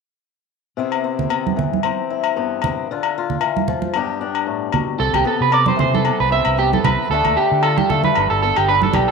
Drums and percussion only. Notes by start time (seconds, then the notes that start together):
0.92 low agogo
1.19 low conga
1.30 low agogo
1.47 high conga
1.59 low conga
1.73 high conga
1.83 low agogo
2.24 low agogo
2.62 low conga, low agogo
3.03 low agogo
3.30 low conga
3.41 low agogo
3.57 high conga
3.68 low conga
3.82 high conga
3.94 low agogo
4.35 low agogo
4.72 low conga, low agogo
5.14 low conga, low agogo
5.52 low agogo
5.66 high conga
5.79 low conga
5.94 high conga
6.05 low agogo
6.45 low agogo
6.73 high conga
6.85 high conga, low conga, low agogo
7.25 low conga, low agogo
7.63 low agogo
7.78 high conga
7.90 low conga
8.04 high conga
8.15 low agogo
8.56 low agogo
8.82 high conga
8.94 high conga, low conga, low agogo